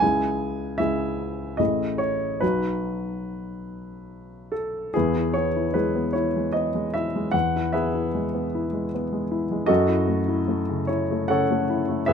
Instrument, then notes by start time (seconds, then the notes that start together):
grand piano
0.00 C#2 G#3 E4 G#4 G#5
0.78 C#2 G#3 E4 G#4 E5
1.57 A1 A3 E4 G#4 D#5
1.98 C#5
2.40 B1 F#3 D#4 F#4 B4
4.52 A4
4.94 E2 B3 E4 G#4
5.16 E4
5.34 B3 C#5
5.56 E4
5.74 G#3 E4 G#4 B4
5.95 B3
6.13 E4 C#5
6.36 G#3
6.53 B3 D#5
6.75 G#3
6.94 E4 E5
7.16 G#3
7.32 E2 F#5
7.56 E4
7.73 B3 G#4 B4 E5
7.94 E4
8.14 G#3
8.34 B3
8.55 E4
8.73 G#3
8.94 B3
9.12 G#3
9.31 E4
9.51 G#3
9.66 F#2 F#4 A4 D#5
9.88 E4
10.07 A3
10.28 E4
10.48 A3
10.69 C#3
10.87 E4 C#5
11.11 A3
11.28 C#3 A4 C#5 F#5
11.51 A3
11.70 E4
11.88 A3
12.06 G#1 G#4 B4 E5